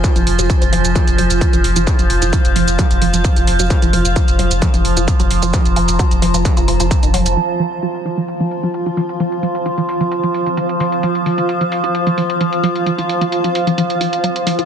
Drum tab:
HH |xxoxxxoxxxoxxxox|xxoxxxoxxxoxxxox|xxoxxxoxxxoxxxox|xxoxxxoxxxoxxxox|
SH |xx-xxx-xxx-xxx-x|xx-xxx-xxx-xxx-x|xx-xxx-xxx-xxx-x|xx-xxx-xxx-xxx-x|
BD |o---o---o---o---|o---o---o---o---|o---o---o---o---|o---o---o---o---|

HH |xxoxxxoxxxoxxxox|xxoxxxoxxxoxxxox|xxoxxxoxxxoxxxox|xxoxxxoxxxoxxxox|
SH |----------------|----------------|----------------|----------------|
BD |----------------|----------------|----------------|----------------|